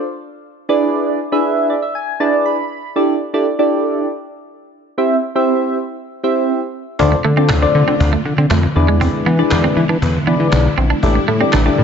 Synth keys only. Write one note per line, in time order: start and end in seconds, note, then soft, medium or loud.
0.69 1.19 D4 medium
0.69 1.19 E4 medium
0.69 1.19 G#4 medium
0.69 1.20 B4 medium
0.69 1.20 D5 loud
1.32 1.74 D4 medium
1.32 1.74 E4 medium
1.32 1.74 G#4 medium
1.32 1.74 B4 medium
1.32 1.74 E5 loud
1.70 1.82 D5 medium
1.82 1.94 E5 medium
1.95 2.19 G#5 medium
2.20 2.56 D4 medium
2.20 2.56 E4 medium
2.20 2.56 G#4 medium
2.20 2.56 B4 medium
2.20 2.57 D5 medium
2.20 2.44 A5 medium
2.46 2.92 B5 medium
2.96 3.14 D4 medium
2.96 3.14 E4 medium
2.96 3.14 G4 medium
2.96 3.14 A4 medium
2.96 3.14 D5 loud
3.34 3.46 D4 medium
3.34 3.46 E4 medium
3.34 3.46 G4 medium
3.34 3.46 A4 medium
3.34 3.46 D5 loud
3.59 4.07 D4 medium
3.59 4.07 E4 medium
3.59 4.07 G4 medium
3.59 4.07 A4 medium
3.59 4.07 D5 medium
4.98 5.16 C4 medium
4.98 5.16 E4 medium
4.98 5.16 G4 medium
4.98 5.16 C5 medium
4.98 5.16 E5 loud
5.35 5.78 C4 medium
5.35 5.78 E4 medium
5.35 5.78 G4 medium
5.35 5.78 C5 medium
5.35 5.78 E5 loud
6.23 6.60 C4 medium
6.23 6.60 E4 medium
6.23 6.60 G4 medium
6.23 6.60 C5 medium
6.23 6.60 E5 loud
6.99 7.17 D4 medium
6.99 7.17 F4 medium
6.99 7.17 A4 medium
6.99 7.17 C5 medium
6.99 7.17 D5 loud
7.37 7.49 D4 medium
7.37 7.49 F4 medium
7.37 7.49 A4 medium
7.37 7.49 C5 medium
7.37 7.49 D5 loud
7.62 8.10 D4 medium
7.62 8.10 F4 medium
7.62 8.10 A4 medium
7.62 8.10 C5 medium
7.62 8.11 D5 loud
8.76 9.26 D4 medium
8.76 9.26 E4 medium
8.76 9.26 G#4 medium
8.76 9.26 B4 medium
8.76 9.26 D5 loud
9.39 9.81 D4 medium
9.39 9.81 E4 medium
9.39 9.81 G#4 medium
9.39 9.81 B4 medium
9.39 9.81 D5 loud
10.27 10.63 D4 medium
10.27 10.63 E4 medium
10.27 10.63 G#4 medium
10.27 10.63 B4 medium
10.27 10.63 D5 loud
11.03 11.21 D4 medium
11.03 11.21 E4 medium
11.03 11.21 G4 medium
11.03 11.21 A4 medium
11.03 11.21 D5 loud
11.40 11.52 D4 medium
11.40 11.53 E4 medium
11.40 11.53 G4 medium
11.40 11.53 A4 medium
11.40 11.53 D5 loud
11.65 11.84 D4 medium
11.65 11.84 E4 medium
11.65 11.84 G4 medium
11.65 11.84 A4 medium
11.65 11.84 D5 loud